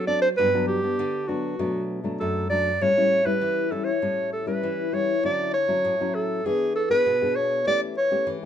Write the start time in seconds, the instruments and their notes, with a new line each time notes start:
Already playing: nylon-string guitar F#3
0.07 nylon-string guitar C4 D4 A4, clarinet D5
0.22 clarinet C5
0.37 nylon-string guitar G2 F#3 B3 D4, clarinet B4
0.54 nylon-string guitar F#3 B3 D4
0.68 clarinet G4
0.83 nylon-string guitar B3 D4
0.99 nylon-string guitar D3
1.28 nylon-string guitar F#3 B3 D4, clarinet F#4
1.59 nylon-string guitar B2 F#3 A3 D4
2.04 nylon-string guitar F#3 A3 D4
2.20 nylon-string guitar F#2, clarinet A4
2.50 nylon-string guitar F#3 A3 D4, clarinet D5
2.81 nylon-string guitar A2 G3 C#4 E4, clarinet C#5
2.97 nylon-string guitar G3 C#4 E4
3.25 nylon-string guitar G3 C#4 E4, clarinet B4
3.42 nylon-string guitar E3
3.71 nylon-string guitar G3 C#4 E4, clarinet A4
3.85 clarinet C#5
4.02 nylon-string guitar A2 G3 C#4 E4
4.33 clarinet A4
4.46 nylon-string guitar G3 C#4 E4, clarinet B4
4.63 nylon-string guitar E3
4.93 nylon-string guitar G3 C#4 E4, clarinet C#5
5.24 nylon-string guitar D3 F#3 C#4 E4, clarinet D5
5.54 clarinet C#5
5.68 nylon-string guitar F#3 C#4 E4
5.85 nylon-string guitar A2
6.00 nylon-string guitar F#3 C#4 E4
6.15 clarinet A4
6.46 nylon-string guitar E3 B3 D4 G#4, clarinet G#4
6.76 clarinet A4
6.90 nylon-string guitar B3 D4 G#4, clarinet B4
7.06 nylon-string guitar B2
7.21 nylon-string guitar B3 D4 G#4
7.36 clarinet C#5
7.66 nylon-string guitar E3 A3 C#4 G4, clarinet D5
7.98 clarinet C#5
8.11 nylon-string guitar A3 C#4 G4
8.27 nylon-string guitar E3